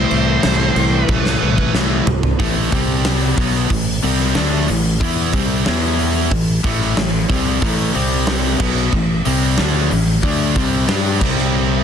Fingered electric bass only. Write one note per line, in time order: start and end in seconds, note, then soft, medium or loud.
0.11 0.37 C2 medium
0.44 0.70 C2 medium
0.76 1.02 C2 medium
1.09 1.35 C2 medium
1.42 1.68 C2 medium
1.74 2.00 C2 medium
2.07 2.33 C2 medium
2.40 2.70 A1 loud
2.73 3.34 C2 loud
3.38 3.68 B1 loud
3.71 4.01 A1 medium
4.04 4.34 C2 medium
4.37 4.67 D2 medium
4.70 5.00 A1 medium
5.01 5.31 E2 loud
5.34 5.64 C2 medium
5.68 6.28 E2 medium
6.32 6.62 A1 medium
6.65 6.95 A1 medium
6.98 7.28 A1 medium
7.30 7.60 C2 medium
7.62 7.93 A1 loud
7.96 8.57 C2 loud
8.60 8.91 B1 loud
8.93 9.23 A1 medium
9.26 9.56 C2 medium
9.59 9.89 D2 medium
9.92 10.22 A1 medium
10.24 10.54 D2 loud
10.56 10.86 C2 medium
10.89 11.19 G2 medium
11.21 11.84 C2 medium